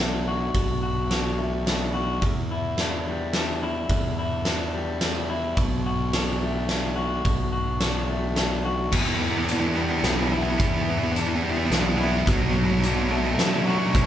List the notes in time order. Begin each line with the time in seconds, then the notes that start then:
Already playing: B1 B2 A3 F#4
0.00 D4
0.28 F#4
0.54 B1 B2, kick, ride
0.83 F#4
1.11 D4, snare, ride
1.38 A3
1.66 D4, snare, ride
1.94 F#4
2.21 E2, kick, ride
2.51 E4
2.78 D4, snare, ride
3.07 G3
3.33 D4, snare, ride
3.63 E4
3.89 E2, kick, ride
4.19 E4
4.45 D4, snare, ride
4.74 G3
5.01 D4, snare, ride
5.30 E4
5.57 B1 B2, kick, ride
5.86 F#4
6.13 D4, snare, ride
6.42 A3
6.69 D4, snare, ride
6.96 F#4
7.25 B1 B2, kick, ride
7.52 F#4
7.80 D4, snare, ride
8.09 A3
8.36 D4, snare, ride
8.65 F#4
8.92 E2 E3 B3, kick, crash
9.00 E3 B3
9.07 E3 B3
9.15 E3 B3
9.20 E3 B3
9.29 E3 B3
9.37 E3 B3
9.44 E3 B3 D4, closed hi-hat
9.52 E3 B3
9.60 E3 B3
9.68 E3 B3
9.75 E3 G3 B3
9.82 E3 B3
9.90 E3 B3
9.98 E3 B3
10.03 B1 E3 B3 D4, snare, closed hi-hat
10.13 E3 B3
10.20 E3 B3
10.28 E3 B3 E4
10.35 E3 B3
10.43 E3 B3
10.49 E3 B3
10.59 E2 E3 B3, kick, closed hi-hat
10.66 E3 B3
10.74 E3 B3
10.82 E3 B3
10.88 E3 B3
10.98 E3 B3
11.04 E3 B3
11.12 E3 B3 D4
11.16 E3, closed hi-hat
11.21 B3
11.28 E3 B3
11.35 E3 B3
11.43 E3 G3 B3
11.50 E3 B3
11.57 E3 B3
11.66 E3 B3
11.70 B1 E3 D4, snare, closed hi-hat
11.75 B3
11.81 E3 B3
11.89 E3 B3
11.97 E3 B3 E4
12.04 E3 B3
12.12 E3 B3
12.19 E3 B3
12.26 B1 B2 F#3, kick, closed hi-hat
12.34 B2 F#3
12.42 B2 F#3
12.50 B2 F#3
12.56 B2 F#3
12.64 B2 F#3
12.72 B2 F#3
12.80 B2 F#3, closed hi-hat
12.84 B2 D4
12.88 F#3
12.94 B2 F#3
13.03 B2 F#3
13.09 B2 F#3 A3
13.18 B2 F#3
13.24 B2 F#3
13.31 B2 F#3
13.38 F#2 B2 D4, snare, closed hi-hat
13.42 F#3
13.47 B2 F#3
13.56 B2 F#3
13.62 B2 F#3
13.67 B2 F#3 F#4
13.78 B2 F#3
13.86 B2 F#3
13.94 B1 B2 F#3, kick, closed hi-hat
14.02 B2 F#3